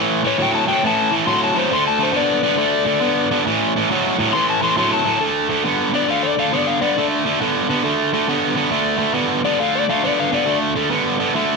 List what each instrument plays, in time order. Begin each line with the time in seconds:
Already playing: overdriven electric guitar A2 E3
0.25 overdriven electric guitar A2 E3, electric slide guitar C#5
0.38 overdriven electric guitar A2 F#3
0.42 electric slide guitar G5
0.55 electric slide guitar A5
0.68 overdriven electric guitar A2 F#3, electric slide guitar G5
0.84 overdriven electric guitar A2 E3, electric slide guitar A5
1.12 overdriven electric guitar A2 E3
1.27 overdriven electric guitar A2 F#3, electric slide guitar C6
1.44 electric slide guitar A5
1.55 overdriven electric guitar A2 F#3, electric slide guitar C5
1.71 overdriven electric guitar D3 A3, electric slide guitar C6
1.88 electric slide guitar A5
2.00 overdriven electric guitar D3 A3, electric slide guitar C5
2.13 overdriven electric guitar D3 B3, electric slide guitar D5
2.43 overdriven electric guitar D3 B3
2.58 overdriven electric guitar D3 A3
2.86 overdriven electric guitar D3 A3
3.01 overdriven electric guitar D3 B3
3.31 overdriven electric guitar D3 B3
3.47 overdriven electric guitar A2 E3
3.76 overdriven electric guitar A2 E3
3.90 overdriven electric guitar A2 F#3
4.19 overdriven electric guitar A2 F#3
4.33 overdriven electric guitar A2 E3, electric slide guitar C6
4.50 electric slide guitar A5
4.62 overdriven electric guitar A2 E3, electric slide guitar C6
4.77 overdriven electric guitar A2 F#3, electric slide guitar C6
4.93 electric slide guitar A5
5.05 overdriven electric guitar A2 F#3
5.20 overdriven electric guitar D3 A3
5.49 overdriven electric guitar D3 A3
5.64 overdriven electric guitar D3 B3
5.94 overdriven electric guitar D3 B3, electric slide guitar D5
6.08 overdriven electric guitar D3 A3, electric slide guitar F5
6.23 electric slide guitar D5
6.39 overdriven electric guitar D3 A3, electric slide guitar F5
6.53 overdriven electric guitar D3 B3, electric slide guitar D5
6.67 electric slide guitar F5
6.81 overdriven electric guitar D3 B3, electric slide guitar D5
6.97 overdriven electric guitar D3 A3
7.25 overdriven electric guitar D3 A3
7.40 overdriven electric guitar D3 B3
7.69 overdriven electric guitar D3 B3
7.84 overdriven electric guitar D3 A3
8.13 overdriven electric guitar D3 A3
8.28 overdriven electric guitar D3 B3
8.56 overdriven electric guitar D3 B3
8.70 overdriven electric guitar D3 A3
8.98 overdriven electric guitar D3 A3
9.15 overdriven electric guitar D3 B3
9.45 overdriven electric guitar D3 B3, electric slide guitar D5
9.59 overdriven electric guitar D3 A3, electric slide guitar F5
9.75 electric slide guitar D5
9.89 overdriven electric guitar D3 A3, electric slide guitar F5
10.04 overdriven electric guitar D3 B3, electric slide guitar D5
10.20 electric slide guitar F5
10.32 overdriven electric guitar D3 B3, electric slide guitar D5
10.46 overdriven electric guitar D3 A3
10.75 overdriven electric guitar D3 A3
10.91 overdriven electric guitar D3 B3
11.20 overdriven electric guitar D3 B3
11.35 overdriven electric guitar D3 A3